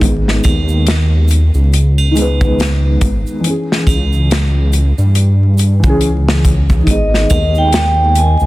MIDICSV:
0, 0, Header, 1, 5, 480
1, 0, Start_track
1, 0, Key_signature, 5, "minor"
1, 0, Tempo, 857143
1, 9, Time_signature, 4, 2, 24, 8
1, 4739, End_track
2, 0, Start_track
2, 0, Title_t, "Vibraphone"
2, 0, Program_c, 0, 11
2, 3865, Note_on_c, 0, 75, 98
2, 4245, Note_on_c, 0, 79, 93
2, 4249, Note_off_c, 0, 75, 0
2, 4578, Note_on_c, 0, 80, 99
2, 4587, Note_off_c, 0, 79, 0
2, 4739, Note_off_c, 0, 80, 0
2, 4739, End_track
3, 0, Start_track
3, 0, Title_t, "Felt piano"
3, 0, Program_c, 1, 0
3, 0, Control_c, 1, 64, 127
3, 0, Note_on_c, 1, 51, 68
3, 3, Note_on_c, 1, 56, 66
3, 16, Control_c, 1, 64, 0
3, 22, Note_on_c, 1, 59, 65
3, 40, Note_on_c, 1, 68, 73
3, 108, Control_c, 1, 64, 127
3, 1173, Note_off_c, 1, 51, 0
3, 1182, Note_off_c, 1, 56, 0
3, 1184, Note_on_c, 1, 51, 90
3, 1192, Note_off_c, 1, 59, 0
3, 1201, Note_off_c, 1, 68, 0
3, 1202, Note_on_c, 1, 56, 89
3, 1220, Note_on_c, 1, 59, 85
3, 1238, Note_on_c, 1, 71, 105
3, 1893, Note_off_c, 1, 51, 0
3, 1902, Note_off_c, 1, 56, 0
3, 1904, Note_on_c, 1, 52, 71
3, 1911, Note_off_c, 1, 59, 0
3, 1920, Note_off_c, 1, 71, 0
3, 1937, Control_c, 1, 64, 0
3, 1940, Note_on_c, 1, 61, 66
3, 1957, Note_on_c, 1, 68, 79
3, 2033, Control_c, 1, 64, 127
3, 3224, Note_off_c, 1, 52, 0
3, 3242, Note_off_c, 1, 61, 0
3, 3245, Note_on_c, 1, 52, 95
3, 3250, Note_off_c, 1, 68, 0
3, 3282, Note_on_c, 1, 61, 90
3, 3299, Note_on_c, 1, 68, 107
3, 3813, Note_off_c, 1, 52, 0
3, 3826, Note_on_c, 1, 51, 73
3, 3831, Note_off_c, 1, 61, 0
3, 3840, Note_off_c, 1, 68, 0
3, 3844, Note_on_c, 1, 56, 64
3, 3857, Control_c, 1, 64, 0
3, 3862, Note_on_c, 1, 59, 63
3, 3881, Note_on_c, 1, 68, 77
3, 3954, Control_c, 1, 64, 127
3, 4739, Note_off_c, 1, 51, 0
3, 4739, Note_off_c, 1, 56, 0
3, 4739, Note_off_c, 1, 59, 0
3, 4739, Note_off_c, 1, 68, 0
3, 4739, End_track
4, 0, Start_track
4, 0, Title_t, "Detuned saw bass"
4, 0, Program_c, 2, 39
4, 9, Note_on_c, 2, 32, 86
4, 225, Note_off_c, 2, 32, 0
4, 250, Note_on_c, 2, 39, 88
4, 843, Note_off_c, 2, 39, 0
4, 865, Note_on_c, 2, 37, 84
4, 1667, Note_off_c, 2, 37, 0
4, 1688, Note_on_c, 2, 32, 81
4, 1813, Note_off_c, 2, 32, 0
4, 2165, Note_on_c, 2, 37, 90
4, 2761, Note_off_c, 2, 37, 0
4, 2790, Note_on_c, 2, 43, 89
4, 3263, Note_off_c, 2, 43, 0
4, 3267, Note_on_c, 2, 37, 75
4, 3828, Note_off_c, 2, 37, 0
4, 3847, Note_on_c, 2, 32, 90
4, 4064, Note_off_c, 2, 32, 0
4, 4091, Note_on_c, 2, 39, 88
4, 4684, Note_off_c, 2, 39, 0
4, 4711, Note_on_c, 2, 37, 90
4, 4739, Note_off_c, 2, 37, 0
4, 4739, End_track
5, 0, Start_track
5, 0, Title_t, "Drums"
5, 6, Note_on_c, 9, 82, 39
5, 8, Note_on_c, 9, 36, 95
5, 15, Note_on_c, 9, 42, 69
5, 62, Note_off_c, 9, 82, 0
5, 64, Note_off_c, 9, 36, 0
5, 71, Note_off_c, 9, 42, 0
5, 157, Note_on_c, 9, 38, 40
5, 213, Note_off_c, 9, 38, 0
5, 243, Note_on_c, 9, 82, 97
5, 245, Note_on_c, 9, 81, 76
5, 247, Note_on_c, 9, 42, 56
5, 251, Note_on_c, 9, 36, 83
5, 299, Note_off_c, 9, 82, 0
5, 301, Note_off_c, 9, 81, 0
5, 303, Note_off_c, 9, 42, 0
5, 307, Note_off_c, 9, 36, 0
5, 383, Note_on_c, 9, 82, 54
5, 439, Note_off_c, 9, 82, 0
5, 485, Note_on_c, 9, 42, 79
5, 486, Note_on_c, 9, 82, 43
5, 495, Note_on_c, 9, 38, 102
5, 541, Note_off_c, 9, 42, 0
5, 542, Note_off_c, 9, 82, 0
5, 551, Note_off_c, 9, 38, 0
5, 717, Note_on_c, 9, 82, 95
5, 732, Note_on_c, 9, 42, 68
5, 773, Note_off_c, 9, 82, 0
5, 788, Note_off_c, 9, 42, 0
5, 863, Note_on_c, 9, 82, 48
5, 919, Note_off_c, 9, 82, 0
5, 966, Note_on_c, 9, 82, 41
5, 972, Note_on_c, 9, 42, 87
5, 1022, Note_off_c, 9, 82, 0
5, 1028, Note_off_c, 9, 42, 0
5, 1109, Note_on_c, 9, 81, 84
5, 1165, Note_off_c, 9, 81, 0
5, 1208, Note_on_c, 9, 82, 97
5, 1213, Note_on_c, 9, 42, 62
5, 1264, Note_off_c, 9, 82, 0
5, 1269, Note_off_c, 9, 42, 0
5, 1349, Note_on_c, 9, 82, 49
5, 1350, Note_on_c, 9, 36, 85
5, 1405, Note_off_c, 9, 82, 0
5, 1406, Note_off_c, 9, 36, 0
5, 1450, Note_on_c, 9, 82, 39
5, 1456, Note_on_c, 9, 42, 74
5, 1461, Note_on_c, 9, 38, 107
5, 1506, Note_off_c, 9, 82, 0
5, 1512, Note_off_c, 9, 42, 0
5, 1517, Note_off_c, 9, 38, 0
5, 1687, Note_on_c, 9, 42, 64
5, 1689, Note_on_c, 9, 36, 94
5, 1690, Note_on_c, 9, 82, 83
5, 1743, Note_off_c, 9, 42, 0
5, 1745, Note_off_c, 9, 36, 0
5, 1746, Note_off_c, 9, 82, 0
5, 1830, Note_on_c, 9, 82, 52
5, 1886, Note_off_c, 9, 82, 0
5, 1927, Note_on_c, 9, 82, 41
5, 1928, Note_on_c, 9, 42, 78
5, 1983, Note_off_c, 9, 82, 0
5, 1984, Note_off_c, 9, 42, 0
5, 2083, Note_on_c, 9, 38, 48
5, 2139, Note_off_c, 9, 38, 0
5, 2165, Note_on_c, 9, 36, 85
5, 2167, Note_on_c, 9, 81, 88
5, 2170, Note_on_c, 9, 82, 87
5, 2176, Note_on_c, 9, 42, 58
5, 2221, Note_off_c, 9, 36, 0
5, 2223, Note_off_c, 9, 81, 0
5, 2226, Note_off_c, 9, 82, 0
5, 2232, Note_off_c, 9, 42, 0
5, 2310, Note_on_c, 9, 82, 55
5, 2366, Note_off_c, 9, 82, 0
5, 2410, Note_on_c, 9, 82, 39
5, 2414, Note_on_c, 9, 42, 81
5, 2420, Note_on_c, 9, 38, 118
5, 2466, Note_off_c, 9, 82, 0
5, 2470, Note_off_c, 9, 42, 0
5, 2476, Note_off_c, 9, 38, 0
5, 2646, Note_on_c, 9, 82, 94
5, 2651, Note_on_c, 9, 42, 57
5, 2702, Note_off_c, 9, 82, 0
5, 2707, Note_off_c, 9, 42, 0
5, 2790, Note_on_c, 9, 82, 55
5, 2846, Note_off_c, 9, 82, 0
5, 2883, Note_on_c, 9, 82, 41
5, 2885, Note_on_c, 9, 42, 82
5, 2939, Note_off_c, 9, 82, 0
5, 2941, Note_off_c, 9, 42, 0
5, 3122, Note_on_c, 9, 82, 85
5, 3132, Note_on_c, 9, 42, 69
5, 3178, Note_off_c, 9, 82, 0
5, 3188, Note_off_c, 9, 42, 0
5, 3267, Note_on_c, 9, 82, 51
5, 3269, Note_on_c, 9, 36, 88
5, 3323, Note_off_c, 9, 82, 0
5, 3325, Note_off_c, 9, 36, 0
5, 3364, Note_on_c, 9, 42, 70
5, 3366, Note_on_c, 9, 82, 38
5, 3420, Note_off_c, 9, 42, 0
5, 3422, Note_off_c, 9, 82, 0
5, 3520, Note_on_c, 9, 38, 104
5, 3576, Note_off_c, 9, 38, 0
5, 3609, Note_on_c, 9, 82, 87
5, 3610, Note_on_c, 9, 36, 100
5, 3611, Note_on_c, 9, 42, 62
5, 3665, Note_off_c, 9, 82, 0
5, 3666, Note_off_c, 9, 36, 0
5, 3667, Note_off_c, 9, 42, 0
5, 3750, Note_on_c, 9, 82, 50
5, 3751, Note_on_c, 9, 36, 91
5, 3806, Note_off_c, 9, 82, 0
5, 3807, Note_off_c, 9, 36, 0
5, 3847, Note_on_c, 9, 36, 87
5, 3847, Note_on_c, 9, 82, 33
5, 3850, Note_on_c, 9, 42, 79
5, 3903, Note_off_c, 9, 36, 0
5, 3903, Note_off_c, 9, 82, 0
5, 3906, Note_off_c, 9, 42, 0
5, 3999, Note_on_c, 9, 38, 41
5, 4055, Note_off_c, 9, 38, 0
5, 4086, Note_on_c, 9, 42, 58
5, 4086, Note_on_c, 9, 82, 98
5, 4088, Note_on_c, 9, 81, 74
5, 4091, Note_on_c, 9, 36, 81
5, 4142, Note_off_c, 9, 42, 0
5, 4142, Note_off_c, 9, 82, 0
5, 4144, Note_off_c, 9, 81, 0
5, 4147, Note_off_c, 9, 36, 0
5, 4226, Note_on_c, 9, 82, 46
5, 4282, Note_off_c, 9, 82, 0
5, 4326, Note_on_c, 9, 42, 82
5, 4334, Note_on_c, 9, 38, 113
5, 4382, Note_off_c, 9, 42, 0
5, 4390, Note_off_c, 9, 38, 0
5, 4567, Note_on_c, 9, 42, 64
5, 4569, Note_on_c, 9, 82, 81
5, 4623, Note_off_c, 9, 42, 0
5, 4625, Note_off_c, 9, 82, 0
5, 4701, Note_on_c, 9, 82, 49
5, 4739, Note_off_c, 9, 82, 0
5, 4739, End_track
0, 0, End_of_file